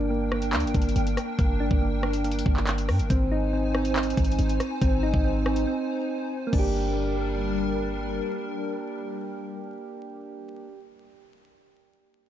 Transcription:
Already playing: 808-style bass G1, synth keys D4, analog synth pad D4 A#4 G5
0.10 synth keys A#3
0.32 synth keys A#3, cross-stick
0.42 closed hi-hat
0.53 808-style bass D2, synth keys A#3, clap, closed hi-hat
0.60 808-style bass G1, closed hi-hat
0.67 closed hi-hat
0.74 808-style bass G1, kick, closed hi-hat
0.82 closed hi-hat
0.89 closed hi-hat
0.96 808-style bass G1, closed hi-hat
1.07 closed hi-hat
1.17 cross-stick, closed hi-hat
1.39 808-style bass G1, synth keys A#3, kick, closed hi-hat
1.60 synth keys D4
1.71 808-style bass G1, kick
1.82 synth keys A#3
2.03 synth keys A#3, cross-stick
2.13 closed hi-hat
2.24 synth keys A#3, closed hi-hat
2.32 closed hi-hat
2.39 closed hi-hat
2.46 808-style bass G1, kick
2.57 clap
2.67 clap, closed hi-hat
2.78 closed hi-hat
2.89 808-style bass G2, cross-stick, open hi-hat
2.99 808-style bass G1, closed hi-hat
3.10 808-style bass G#1, synth keys C4, analog synth pad D#4 C5 G#5, kick, closed hi-hat
3.32 synth keys D#4
3.53 synth keys C4
3.74 synth keys C4, cross-stick
3.85 closed hi-hat
3.96 synth keys C4, clap, closed hi-hat
4.03 closed hi-hat
4.10 closed hi-hat
4.17 808-style bass G#1, kick, closed hi-hat
4.24 closed hi-hat
4.32 closed hi-hat
4.39 808-style bass G#1, closed hi-hat
4.49 closed hi-hat
4.60 cross-stick, closed hi-hat
4.82 808-style bass G#1, synth keys C4, kick, closed hi-hat
5.03 synth keys D#4
5.14 808-style bass G#1, kick
5.24 synth keys C4
5.46 synth keys C4, cross-stick
5.56 closed hi-hat
5.67 synth keys C4
6.47 synth keys A#3
6.53 808-style bass G1, analog synth pad G3 D4 A#4, synth keys D4, kick, crash
6.59 synth keys G4

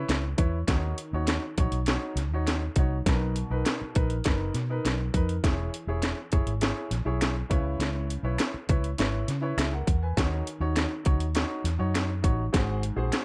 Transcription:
Already playing: upright piano E4 B4 C#5
0.09 fingered electric bass C#2, snare, closed hi-hat
0.37 fingered electric bass E2, upright piano E4 B4 C#5, kick, closed hi-hat
0.67 fingered electric bass D#2, upright piano D#3 D#4 F#4 C#5, kick, snare, closed hi-hat
0.98 closed hi-hat
1.13 fingered electric bass D#2, upright piano D#4 F#4 C#5
1.27 snare, closed hi-hat
1.57 fingered electric bass A#1, upright piano D#4 F#4 C#5, kick, closed hi-hat
1.72 fingered electric bass B1, closed hi-hat
1.86 upright piano D#4 F#4 C#5, snare, closed hi-hat
2.15 fingered electric bass C#2, snare, closed hi-hat
2.31 fingered electric bass D#2, upright piano D#4 F#4 C#5
2.47 snare, closed hi-hat
2.76 fingered electric bass C2, upright piano D#4 F#4 C#5, kick, closed hi-hat
3.06 fingered electric bass B1, upright piano B2 D#4 A#4 B4, kick, snare, closed hi-hat
3.36 closed hi-hat
3.50 fingered electric bass B1, upright piano D#4 A#4 B4
3.66 snare, closed hi-hat
3.81 muted fingered electric bass stroke
3.95 fingered electric bass A#1, upright piano D#4 A#4 B4, kick, closed hi-hat
4.10 closed hi-hat
4.24 fingered electric bass F#1, upright piano D#4 A#4 B4, kick, snare, closed hi-hat
4.54 fingered electric bass B2, snare, closed hi-hat
4.70 upright piano D#4 A#4 B4
4.85 fingered electric bass B1, snare, closed hi-hat
5.14 fingered electric bass F2, upright piano D#4 A#4 B4, kick, closed hi-hat
5.29 closed hi-hat
5.43 fingered electric bass E1, upright piano E3 E4 G#4 C#5, kick, snare, closed hi-hat
5.74 closed hi-hat
5.87 fingered electric bass E1, upright piano E4 G#4 C#5
6.02 finger snap, snare, closed hi-hat
6.32 fingered electric bass F#1, upright piano E4 G#4 C#5, kick, closed hi-hat
6.46 fingered electric bass G#1, closed hi-hat
6.61 upright piano E4 G#4 C#5, snare, closed hi-hat
6.91 fingered electric bass A#1, snare, closed hi-hat
7.05 fingered electric bass B1, upright piano E4 G#4 C#5
7.21 finger snap, snare, closed hi-hat
7.49 fingered electric bass C#2, upright piano C#3 E4 B4 C#5, kick, closed hi-hat
7.79 fingered electric bass C#2, snare, closed hi-hat
8.10 closed hi-hat
8.23 fingered electric bass B1, upright piano E4 B4 C#5
8.38 finger snap, snare, closed hi-hat
8.54 muted fingered electric bass stroke
8.69 fingered electric bass C#2, upright piano E4 B4 C#5, kick, closed hi-hat
8.84 closed hi-hat
8.98 fingered electric bass G#1, upright piano E4 B4 C#5, snare, closed hi-hat
9.28 fingered electric bass C#3, snare, closed hi-hat
9.41 upright piano E4 B4 C#5
9.57 fingered electric bass C#2, upright piano G#4 E5, finger snap, snare, closed hi-hat
9.72 upright piano A#4 F#5
9.87 fingered electric bass E2, kick, closed hi-hat
10.03 upright piano B4 G#5
10.17 fingered electric bass D#2, upright piano D#3 D#4 F#4 C#5, kick, snare, closed hi-hat
10.47 closed hi-hat
10.60 fingered electric bass D#2, upright piano D#4 F#4 C#5
10.76 finger snap, snare, closed hi-hat
11.04 fingered electric bass C#2, upright piano D#4 F#4 C#5, kick, closed hi-hat
11.19 fingered electric bass D#2, closed hi-hat
11.35 upright piano D#4 F#4 C#5, snare, closed hi-hat
11.64 fingered electric bass E2, snare, closed hi-hat
11.79 fingered electric bass F#2, upright piano D#4 F#4 C#5
11.95 finger snap, snare, closed hi-hat
12.22 fingered electric bass A1, upright piano D#4 F#4 C#5, kick, closed hi-hat
12.53 fingered electric bass G#1, upright piano G#2 F#4 G#4 C5, kick, snare, closed hi-hat
12.83 closed hi-hat
12.96 fingered electric bass A#1, upright piano F#4 G#4 C5
13.12 finger snap, snare, closed hi-hat

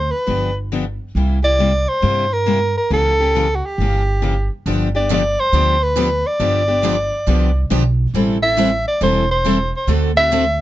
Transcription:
Already playing: upright bass D2, soprano saxophone C5
0.11 soprano saxophone B4
0.27 upright bass G1, steel-string acoustic guitar D3 F3 B3 D4 G4
0.72 steel-string acoustic guitar D3 F3 B3 D4 G4
1.15 upright bass C2, steel-string acoustic guitar C3 G3 A#3 E4 G4
1.42 steel-string acoustic guitar A#3 E4 G4, soprano saxophone D5
1.59 steel-string acoustic guitar C3 G3 A#3 E4 G4
1.89 soprano saxophone C5
2.02 upright bass G2, steel-string acoustic guitar C3 G3 A#3 E4 G4
2.33 soprano saxophone A#4
2.46 steel-string acoustic guitar C3 G3 A#3 E4 G4
2.77 soprano saxophone A#4
2.90 upright bass C#2, steel-string acoustic guitar C#3 E3 A#3 C#4 G4, soprano saxophone A4
3.20 steel-string acoustic guitar A#3 C#4 G4
3.35 steel-string acoustic guitar C#3 E3 A#3 C#4 G4
3.55 soprano saxophone F#4
3.66 soprano saxophone G4
3.78 upright bass G1, steel-string acoustic guitar C#3 E3 A#3 C#4 G4
4.22 steel-string acoustic guitar C#3 E3 A#3 C#4 G4
4.66 upright bass G1, steel-string acoustic guitar D3 F3 B3 D4 G4
4.95 steel-string acoustic guitar B3 D4 G4, soprano saxophone D5
5.11 steel-string acoustic guitar D3 F3 B3 D4 G4, soprano saxophone D5
5.40 soprano saxophone C5
5.53 upright bass D2, steel-string acoustic guitar D3 F3 B3 D4 G4
5.83 soprano saxophone B4
5.96 steel-string acoustic guitar D3 F3 B3 D4 G4
6.27 soprano saxophone D5
6.40 upright bass G1, steel-string acoustic guitar D3 F3 B3 D4 G4
6.68 steel-string acoustic guitar B3 D4 G4
6.82 steel-string acoustic guitar D3 F3 B3 D4 G4
7.27 upright bass C2, steel-string acoustic guitar D3 F3 B3 D4 G4
7.70 upright bass B1, steel-string acoustic guitar D3 F3 B3 D4 G4
8.14 upright bass A1, steel-string acoustic guitar E3 G3 C4 E4 A4
8.42 steel-string acoustic guitar C4 E4 A4, soprano saxophone E5
8.57 steel-string acoustic guitar E3 G3 C4 E4 A4
8.88 soprano saxophone D5
9.01 upright bass E1, steel-string acoustic guitar E3 G3 C4 E4 A4, soprano saxophone C5
9.31 soprano saxophone C5
9.45 steel-string acoustic guitar E3 G3 C4 E4 A4
9.76 soprano saxophone C5
9.87 upright bass D2, steel-string acoustic guitar D3 A3 C4 F#4 A4
10.16 steel-string acoustic guitar C4 F#4 A4, soprano saxophone E5
10.31 steel-string acoustic guitar D3 A3 C4 F#4 A4

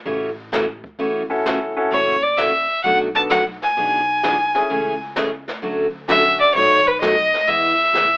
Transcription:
0.05 upright bass A1, steel-string acoustic guitar C#3 E3 A3 C#4 F#4, brush sweep, kick
0.52 steel-string acoustic guitar C#3 E3 A3 C#4 F#4, snare, hi-hat pedal
0.84 kick
0.99 upright bass E2, steel-string acoustic guitar C#3 E3 A3 C#4 F#4, brush sweep, kick
1.30 upright piano C#4 E4 F#4 A4
1.46 steel-string acoustic guitar C#3 E3 A3 C#4 F#4, snare, hi-hat pedal
1.77 upright piano C#4 E4 F#4 A4
1.91 upright bass F#1, steel-string acoustic guitar C#3 E3 A3 C#4 F#4, fiddle C#5, brush sweep, kick
2.23 fiddle D5
2.37 steel-string acoustic guitar C#3 E3 A3 C#4 F#4, fiddle E5, snare, hi-hat pedal
2.83 upright bass B1, steel-string acoustic guitar B2 F#3 A3 D4 F#4, fiddle F#5, brush sweep, kick
3.15 upright piano B3 D4 F#4 A4, fiddle A5
3.29 steel-string acoustic guitar B2 F#3 A3 D4 F#4, fiddle F#5, snare, hi-hat pedal
3.62 fiddle G#5, snare
3.77 upright bass B1, steel-string acoustic guitar B2 E3 B3 D4 G#4, brush sweep, kick
4.23 steel-string acoustic guitar B2 E3 B3 D4 G#4, snare, hi-hat pedal
4.55 upright piano A3 C#4 E4 G#4, snare
4.70 upright bass C#2, steel-string acoustic guitar C#3 E3 A3 C#4 G#4, brush sweep, kick
5.16 steel-string acoustic guitar C#3 E3 A3 C#4 G#4, snare, hi-hat pedal
5.48 snare
5.62 upright bass D2, steel-string acoustic guitar D3 F#3 A3 C#4 F#4, brush sweep, kick
6.08 steel-string acoustic guitar D3 F#3 A3 C#4 F#4, upright piano A3 C#4 D4 F#4, fiddle E5, snare, hi-hat pedal
6.40 fiddle D5
6.55 upright bass B1, steel-string acoustic guitar B2 F#3 A3 D#4 F#4, fiddle C#5, brush sweep, kick
6.87 fiddle B4
7.01 steel-string acoustic guitar B2 F#3 A3 D#4 F#4, fiddle D#5, snare, hi-hat pedal
7.34 snare
7.48 upright bass E2, steel-string acoustic guitar E3 G#3 B3 E4 G#4, fiddle E5, brush sweep, kick
7.93 upright bass C#2, steel-string acoustic guitar E3 G#3 B3 E4 G#4, snare, hi-hat pedal

